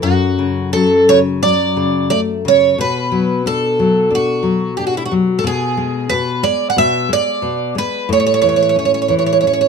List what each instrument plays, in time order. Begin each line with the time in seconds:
0.02 nylon-string guitar F#2, twelve-string acoustic guitar F#4
0.39 nylon-string guitar C#3
0.73 nylon-string guitar F#3, twelve-string acoustic guitar A4
1.09 nylon-string guitar C#3, twelve-string acoustic guitar C#5
1.43 nylon-string guitar F#3, twelve-string acoustic guitar D5
1.77 nylon-string guitar C#3
2.10 nylon-string guitar A3, twelve-string acoustic guitar D5
2.45 nylon-string guitar C#3, twelve-string acoustic guitar C#5
2.78 nylon-string guitar B2, twelve-string acoustic guitar B4
3.12 nylon-string guitar F#3
3.46 nylon-string guitar D4, twelve-string acoustic guitar A4
3.79 nylon-string guitar F#3
4.11 nylon-string guitar D4
4.15 twelve-string acoustic guitar F#4
4.43 nylon-string guitar F#3
4.77 nylon-string guitar D4, twelve-string acoustic guitar G4
4.87 twelve-string acoustic guitar F#4
4.97 twelve-string acoustic guitar E4
5.06 twelve-string acoustic guitar F#4
5.12 nylon-string guitar F#3
5.39 twelve-string acoustic guitar A4
5.44 nylon-string guitar B2, twelve-string acoustic guitar G#4
5.77 nylon-string guitar G#3
6.10 nylon-string guitar B2, twelve-string acoustic guitar B4
6.43 nylon-string guitar G#3, twelve-string acoustic guitar D5
6.70 twelve-string acoustic guitar F#5
6.77 nylon-string guitar B2, twelve-string acoustic guitar E5
7.09 nylon-string guitar G#3
7.13 twelve-string acoustic guitar D5
7.42 nylon-string guitar B2
7.75 nylon-string guitar G#3, twelve-string acoustic guitar B4
8.09 nylon-string guitar A2, twelve-string acoustic guitar C#5
8.20 twelve-string acoustic guitar C#5
8.27 twelve-string acoustic guitar C#5
8.34 twelve-string acoustic guitar C#5
8.42 nylon-string guitar E3, twelve-string acoustic guitar C#5
8.49 twelve-string acoustic guitar C#5
8.56 twelve-string acoustic guitar C#5
8.63 twelve-string acoustic guitar C#5
8.69 twelve-string acoustic guitar C#5
8.76 nylon-string guitar C#4, twelve-string acoustic guitar C#5
8.85 twelve-string acoustic guitar C#5
8.94 twelve-string acoustic guitar C#5
9.02 twelve-string acoustic guitar C#5
9.08 nylon-string guitar E3, twelve-string acoustic guitar C#5
9.19 twelve-string acoustic guitar C#5
9.26 twelve-string acoustic guitar C#5
9.33 twelve-string acoustic guitar C#5
9.41 nylon-string guitar C#4, twelve-string acoustic guitar C#5
9.47 twelve-string acoustic guitar C#5
9.53 twelve-string acoustic guitar C#5
9.61 twelve-string acoustic guitar C#5